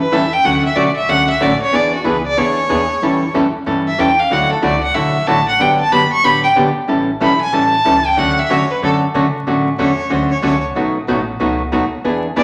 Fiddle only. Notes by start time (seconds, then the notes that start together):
0.00 B4
0.13 E5
0.33 G5
0.45 F#5
0.65 E5
0.76 D5
0.96 E5
1.09 F#5
1.30 E5
1.42 D5
1.62 C#5
1.75 D5
1.95 F#4
2.07 B4
2.27 D5
2.39 C#5
3.88 E5
4.00 G5
4.19 F5
4.33 F#5
4.52 A4
4.63 D5
4.83 F#5
4.95 E5
5.27 A5
5.48 F#5
5.61 G5
5.81 A5
5.92 B5
6.13 C#6
6.24 B5
6.43 G5
7.22 B5
7.41 G#5
7.54 A5
8.06 G5
8.18 F#5
8.39 E5
8.51 C#5
8.71 B4
8.84 A4
9.80 C#5
10.12 C5
10.31 C#5
10.44 C#5
12.37 D5